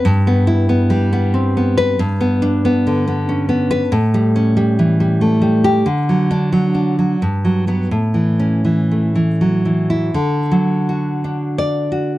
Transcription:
\new Staff \with { instrumentName = "Nylon-string guitar" } { \time 3/4 \key e \minor \tempo 4 = 91 << { r2 \tuplet 3/2 { r4 b'8 } | \key d \major r2 \tuplet 3/2 { r4 b'8 } | r2 \tuplet 3/2 { r4 g'8 } | \tuplet 3/2 { r4 d'8 } r4 \tuplet 3/2 { r4 b8 } |
r2 \tuplet 3/2 { r4 e'8 } | r2 d''4 | } \\ { \tuplet 3/2 { g,8 b8 e'8 b8 g8 b8 c'8 b4 } | \tuplet 3/2 { g,8 b8 d'8 b8 d8 b8 cis'8 b4 } | \tuplet 3/2 { a,8 g8 cis'8 g8 e8 g8 a8 g4 } | \tuplet 3/2 { d8 fis4 fis8 d'8 fis8 g,8 fis8 fis8 } |
\tuplet 3/2 { a,8 e8 cis'8 e8 a8 e8 fis8 e4 } | d8 fis8 fis'8 d'4 fis'8 | } >> }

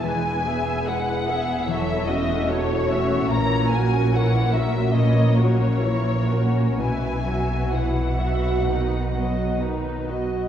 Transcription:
<<
  \new Staff \with { instrumentName = "Violin section" } { \time 4/4 \key fis \dorian \tempo 4 = 72 gis''4 fis''4 e''8 dis''8 cis''4 | ais''8 gis''8 fis''8 e''8 dis''8 cis''4. | gis''4 fis''2 r4 | }
  \new Staff \with { instrumentName = "Violin section" } { \time 4/4 \key fis \dorian b'8 <gis' e''>8 b'8 <gis' e''>8 <a' cis''>8 <fis' e''>8 <a' cis''>8 <fis' e''>8 | <ais' cis''>8 <fis' ais'>8 <ais' cis''>8 <fis' ais'>8 <ais' cis''>8 <fis' ais'>8 <ais' cis''>8 <fis' ais'>8 | <e' b'>8 <fis' e''>8 <e' b'>8 <fis' e''>8 <dis' b'>8 <fis' dis''>8 <dis' b'>8 <fis' dis''>8 | }
  \new Staff \with { instrumentName = "Harp" } { \time 4/4 \key fis \dorian <e b e' gis'>8 b8 gis'8 e'8 e8 e'8 fis'8 cis'8 | ais,8 ais8 e'8 cis'8 ais,8 ais8 e'8 cis'8 | b,8 fis8 e'8 b8 b,8 fis8 dis'8 b8 | }
  \new Staff \with { instrumentName = "Viola section" } { \time 4/4 \key fis \dorian <gis e'>8 <b gis'>8 <gis e'>8 <b gis'>8 <fis e'>8 <a cis'>8 <fis e'>8 <a cis'>8 | <e e'>8 <fis cis'>8 <e e'>8 <fis cis'>8 <e e'>8 <fis cis'>8 <e e'>8 <fis cis'>8 | <e e'>8 <fis fis'>8 <e e'>8 <fis fis'>8 <dis dis'>8 <fis b>8 <dis dis'>8 <fis b>8 | }
  \new Staff \with { instrumentName = "Cello section" } { \clef bass \time 4/4 \key fis \dorian e,2 e,2 | ais,1 | b,2.~ b,8. r16 | }
  \new Staff \with { instrumentName = "Double bass section" } { \clef bass \time 4/4 \key fis \dorian e,,2 e,,2 | ais,,1 | b,,2.~ b,,8. r16 | }
>>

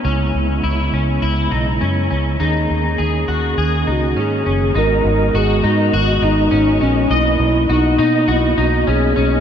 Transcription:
<<
  \new Staff \with { instrumentName = "Soft synth lead" } { \time 4/4 \key gis \minor \tempo 4 = 102 r1 | r2 r8 fis'8 gis'4 | ais'4 gis'8 fis'4 dis'4 cis'8 | e'4 dis'4 e'8 fis'8 gis'4 | }
  \new Staff \with { instrumentName = "Clean electric guitar" } { \time 4/4 \key gis \minor cis'4 e'8 cis'8 e'8 dis'8 cis'8 cis'8 | dis'4 gis'8 fis'8 gis'8 dis'8 cis'8 cis'8 | dis'4 fis'8 dis'8 fis'8 dis'8 cis'8 cis'8 | dis''4 fis'8 dis'8 fis'8 dis'8 cis'8 cis'8 | }
  \new Staff \with { instrumentName = "Tonewheel organ" } { \time 4/4 \key gis \minor <cis gis b e'>1 | <dis ais cis' gis'>1 | <gis b fis' dis''>1 | <ais b>1 | }
  \new Staff \with { instrumentName = "Fingered electric bass" } { \clef bass \time 4/4 \key gis \minor cis,8 cis,8 cis,8 cis,8 cis,8 b,,8 fis,8 cis,8 | dis,8 dis,8 dis,8 dis,8 dis,8 cis,8 gis,8 fis,,8 | gis,,8 gis,,8 gis,,8 gis,8 gis,,8 gis,,8 gis,,8 ais,,8 | b,,8 b,,8 b,,8 b,8 b,,8 b,,8 b,,8 b,,8 | }
>>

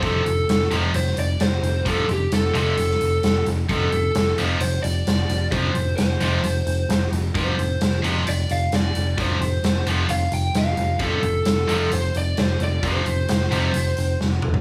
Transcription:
<<
  \new Staff \with { instrumentName = "Lead electric guitar" } { \time 4/4 \key f \major \tempo 4 = 131 a'4. r8 c''8 d''8 c''4 | a'8 g'8 a'8 a'2 r8 | a'4. r8 c''8 d''4. | c''4 c''2~ c''8 r8 |
c''4. r8 d''8 f''8 d''4 | c''4. r8 f''8 g''8 f''4 | a'2 c''8 d''8 c''8 d''8 | c''2. r4 | }
  \new Staff \with { instrumentName = "Distorted electric guitar" } { \clef bass \time 4/4 \key f \major <f, c f>8 r4 <f, c f>8 r2 | <f, c f>8 r4 <f, c f>8 r2 | <f, c f>8 r4 <f, c f>8 r2 | <f, c f>8 r4 <f, c f>8 r2 |
<f, c f>8 r4 <f, c f>8 r2 | <f, c f>8 r4 <f, c f>8 r2 | <f, c f>8 r4 <f, c f>8 r2 | <f, c f>8 r4 <f, c f>8 r2 | }
  \new Staff \with { instrumentName = "Picked electric bass" } { \clef bass \time 4/4 \key f \major f,,8 f,,8 f,,8 f,,8 f,,8 f,,8 f,,8 f,,8 | f,,8 f,,8 f,,8 f,,8 f,,8 f,,8 f,,8 f,,8 | f,,8 f,,8 f,,8 f,,8 f,,8 f,,8 f,,8 f,,8 | f,,8 f,,8 f,,8 f,,8 f,,8 f,,8 f,,8 f,,8 |
f,,8 f,,8 f,,8 f,,8 f,,8 f,,8 f,,8 f,,8 | f,,8 f,,8 f,,8 f,,8 f,,8 f,,8 f,,8 f,,8 | f,,8 f,,8 f,,8 f,,8 f,,8 f,,8 f,,8 f,,8 | f,,8 f,,8 f,,8 f,,8 f,,8 f,,8 f,,8 f,,8 | }
  \new DrumStaff \with { instrumentName = "Drums" } \drummode { \time 4/4 <hh bd>8 hh8 <hh sn>16 sn16 hh8 hh16 sn16 hh8 <hh sn>8 hh8 | <hh bd>8 hh8 <hh sn>8 hh8 hh16 sn16 hh8 <hh sn>8 hh8 | <hh bd>8 hh8 <hh sn>16 sn16 hh8 hh8 hh8 <hh sn>8 hh8 | <hh bd>8 hh8 <hh sn>8 hh8 hh8 hh8 <hh sn>8 hh8 |
<hh bd>8 hh8 <hh sn>16 sn16 hh8 hh8 hh8 <hh sn>8 hh8 | <hh bd>8 hh8 <hh sn>8 hh8 hh8 hh8 <hh sn>8 hh8 | <hh bd>8 hh8 <hh sn>8 hh8 hh8 hh8 <hh sn>8 hh8 | <hh bd>8 hh8 <hh sn>16 sn16 hh8 hh8 hh8 sn8 toml16 tomfh16 | }
>>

